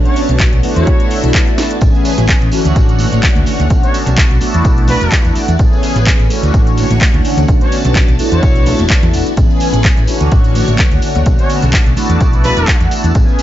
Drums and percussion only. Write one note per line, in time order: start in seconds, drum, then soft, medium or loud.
0.05 closed hi-hat soft
0.05 cabasa soft
0.16 open hi-hat loud
0.16 cabasa medium
0.29 closed hi-hat medium
0.29 cabasa soft
0.40 kick loud
0.40 clap loud
0.40 closed hi-hat medium
0.53 closed hi-hat soft
0.53 cabasa soft
0.63 open hi-hat loud
0.63 cabasa medium
0.76 closed hi-hat medium
0.76 cabasa soft
0.87 kick loud
0.87 closed hi-hat medium
0.87 cabasa soft
1.00 closed hi-hat soft
1.00 cabasa soft
1.11 open hi-hat loud
1.11 cabasa medium
1.24 closed hi-hat medium
1.24 cabasa soft
1.34 kick loud
1.34 clap loud
1.34 closed hi-hat medium
1.47 closed hi-hat soft
1.47 cabasa soft
1.58 snare medium
1.58 open hi-hat loud
1.58 cabasa medium
1.71 closed hi-hat medium
1.71 cabasa soft
1.81 kick loud
1.81 closed hi-hat medium
1.81 tambourine medium
1.81 cabasa soft
1.94 tambourine soft
1.94 cabasa soft
2.05 open hi-hat loud
2.05 tambourine loud
2.05 cabasa medium
2.18 closed hi-hat medium
2.18 tambourine soft
2.18 low conga medium
2.18 cabasa soft
2.29 kick loud
2.29 clap loud
2.29 closed hi-hat medium
2.41 closed hi-hat soft
2.41 tambourine soft
2.41 cabasa soft
2.52 open hi-hat loud
2.52 tambourine loud
2.52 cabasa medium
2.65 closed hi-hat medium
2.65 tambourine soft
2.65 cabasa soft
2.76 kick loud
2.76 closed hi-hat medium
2.76 tambourine medium
2.76 cabasa soft
2.89 closed hi-hat soft
2.89 tambourine soft
2.89 cabasa soft
2.99 open hi-hat loud
2.99 tambourine loud
2.99 high conga medium
2.99 cabasa medium
3.12 closed hi-hat medium
3.12 tambourine soft
3.12 high conga medium
3.12 cabasa soft
3.23 kick loud
3.23 clap loud
3.23 closed hi-hat medium
3.35 closed hi-hat soft
3.35 tambourine soft
3.35 high conga medium
3.35 cabasa soft
3.46 open hi-hat loud
3.46 tambourine loud
3.46 cabasa medium
3.60 closed hi-hat medium
3.60 tambourine soft
3.60 high conga medium
3.60 cabasa soft
3.70 kick loud
3.70 closed hi-hat medium
3.70 tambourine medium
3.70 cabasa soft
3.83 closed hi-hat soft
3.83 tambourine soft
3.83 cabasa soft
3.94 open hi-hat loud
3.94 tambourine loud
3.94 cabasa medium
4.06 closed hi-hat medium
4.06 tambourine soft
4.06 low conga medium
4.06 cabasa soft
4.17 kick loud
4.17 clap loud
4.17 closed hi-hat medium
4.17 tambourine medium
4.30 closed hi-hat soft
4.30 tambourine soft
4.30 cabasa soft
4.41 open hi-hat loud
4.41 tambourine medium
4.41 cabasa medium
4.54 closed hi-hat medium
4.54 tambourine soft
4.54 cabasa soft
4.64 kick loud
4.64 closed hi-hat medium
4.64 tambourine medium
4.64 cabasa soft
4.77 closed hi-hat soft
4.77 tambourine soft
4.77 cabasa soft
4.88 open hi-hat loud
4.88 tambourine medium
4.88 low conga medium
4.88 cabasa medium
5.01 closed hi-hat medium
5.01 tambourine soft
5.01 cabasa soft
5.12 kick loud
5.12 clap loud
5.12 closed hi-hat medium
5.12 tambourine medium
5.25 closed hi-hat soft
5.25 tambourine soft
5.25 cabasa soft
5.35 open hi-hat loud
5.35 tambourine medium
5.35 cabasa medium
5.48 closed hi-hat medium
5.48 tambourine soft
5.48 cabasa soft
5.59 kick loud
5.59 closed hi-hat medium
5.59 tambourine soft
5.59 cabasa soft
5.73 tambourine soft
5.73 cabasa soft
5.83 open hi-hat loud
5.83 tambourine medium
5.83 cabasa medium
5.96 closed hi-hat medium
5.96 tambourine soft
5.96 low conga medium
5.96 cabasa soft
6.07 kick loud
6.07 clap loud
6.07 closed hi-hat medium
6.19 closed hi-hat soft
6.19 tambourine soft
6.19 cabasa soft
6.30 open hi-hat loud
6.30 tambourine medium
6.30 cabasa medium
6.43 closed hi-hat medium
6.43 tambourine soft
6.43 cabasa soft
6.54 kick loud
6.54 closed hi-hat medium
6.54 tambourine medium
6.54 cabasa soft
6.67 closed hi-hat soft
6.67 tambourine soft
6.67 cabasa soft
6.77 open hi-hat loud
6.77 tambourine medium
6.77 high conga medium
6.77 cabasa medium
6.91 closed hi-hat medium
6.91 tambourine soft
6.91 high conga medium
6.91 cabasa soft
7.01 kick loud
7.01 clap loud
7.01 closed hi-hat medium
7.01 tambourine medium
7.14 closed hi-hat soft
7.14 tambourine soft
7.14 high conga medium
7.14 cabasa soft
7.25 open hi-hat loud
7.25 tambourine medium
7.25 cabasa medium
7.38 closed hi-hat medium
7.38 tambourine soft
7.38 high conga medium
7.38 cabasa soft
7.48 kick loud
7.48 closed hi-hat medium
7.48 tambourine medium
7.48 cabasa soft
7.61 closed hi-hat soft
7.61 tambourine soft
7.61 cabasa soft
7.72 open hi-hat loud
7.72 tambourine loud
7.72 cabasa medium
7.85 closed hi-hat medium
7.85 tambourine soft
7.85 low conga medium
7.85 cabasa soft
7.95 kick loud
7.95 clap loud
7.95 closed hi-hat medium
7.95 tambourine medium
8.08 closed hi-hat soft
8.08 tambourine soft
8.08 cabasa soft
8.19 open hi-hat loud
8.19 tambourine medium
8.19 cabasa medium
8.32 closed hi-hat soft
8.32 tambourine soft
8.32 cabasa soft
8.43 kick loud
8.43 closed hi-hat medium
8.43 tambourine medium
8.43 cabasa soft
8.56 closed hi-hat soft
8.56 tambourine soft
8.56 cabasa soft
8.66 open hi-hat loud
8.66 tambourine medium
8.66 low conga medium
8.66 cabasa medium
8.79 closed hi-hat soft
8.79 tambourine soft
8.79 high conga medium
8.79 cabasa soft
8.90 kick loud
8.90 clap loud
8.90 closed hi-hat medium
8.90 tambourine soft
9.03 closed hi-hat soft
9.03 tambourine soft
9.03 low conga medium
9.03 cabasa soft
9.13 open hi-hat loud
9.13 tambourine medium
9.13 cabasa medium
9.26 closed hi-hat soft
9.26 tambourine soft
9.26 cabasa soft
9.37 kick loud
9.37 closed hi-hat medium
9.37 tambourine medium
9.37 cabasa soft
9.50 tambourine soft
9.50 cabasa soft
9.60 open hi-hat loud
9.60 tambourine medium
9.60 cabasa medium
9.73 closed hi-hat medium
9.73 tambourine soft
9.73 low conga medium
9.73 cabasa soft
9.84 kick loud
9.84 clap loud
9.84 closed hi-hat medium
9.84 tambourine medium
9.97 closed hi-hat soft
9.97 tambourine soft
9.97 cabasa soft
10.07 open hi-hat loud
10.07 tambourine medium
10.07 cabasa medium
10.21 closed hi-hat soft
10.21 tambourine soft
10.21 cabasa soft
10.31 kick loud
10.31 closed hi-hat medium
10.31 tambourine medium
10.31 cabasa soft
10.44 closed hi-hat soft
10.44 tambourine soft
10.44 cabasa soft
10.55 open hi-hat loud
10.55 tambourine medium
10.55 high conga medium
10.55 cabasa medium
10.68 closed hi-hat medium
10.68 tambourine soft
10.68 high conga medium
10.68 cabasa soft
10.79 kick loud
10.79 clap loud
10.79 closed hi-hat medium
10.79 tambourine soft
10.91 closed hi-hat soft
10.91 tambourine soft
10.91 high conga medium
10.91 cabasa soft
11.02 open hi-hat loud
11.02 tambourine medium
11.02 cabasa medium
11.15 closed hi-hat soft
11.15 tambourine soft
11.15 high conga medium
11.15 cabasa soft
11.26 kick loud
11.26 closed hi-hat medium
11.26 tambourine medium
11.26 cabasa soft
11.39 closed hi-hat soft
11.39 tambourine soft
11.39 cabasa soft
11.49 open hi-hat loud
11.49 tambourine medium
11.49 cabasa medium
11.62 closed hi-hat medium
11.62 tambourine soft
11.62 low conga medium
11.62 cabasa soft
11.73 kick loud
11.73 clap loud
11.73 closed hi-hat medium
11.73 tambourine medium
11.86 closed hi-hat soft
11.86 tambourine soft
11.86 cabasa soft
11.97 open hi-hat loud
11.97 tambourine medium
11.97 cabasa medium
12.10 closed hi-hat medium
12.10 tambourine soft
12.10 cabasa soft
12.21 kick loud
12.21 closed hi-hat medium
12.21 tambourine medium
12.21 cabasa soft
12.33 closed hi-hat soft
12.33 tambourine soft
12.33 cabasa soft
12.44 open hi-hat loud
12.44 tambourine medium
12.44 low conga medium
12.44 cabasa medium
12.57 closed hi-hat soft
12.57 tambourine soft
12.57 cabasa soft
12.68 kick loud
12.68 clap loud
12.68 closed hi-hat medium
12.68 tambourine soft
12.81 closed hi-hat soft
12.81 tambourine soft
12.81 cabasa soft
12.91 open hi-hat loud
12.91 tambourine medium
12.91 cabasa medium
13.04 closed hi-hat medium
13.04 tambourine soft
13.04 cabasa soft
13.15 kick loud
13.15 closed hi-hat medium
13.15 tambourine medium
13.15 cabasa soft
13.28 tambourine soft
13.28 cabasa soft
13.39 open hi-hat loud
13.39 tambourine loud
13.39 cabasa medium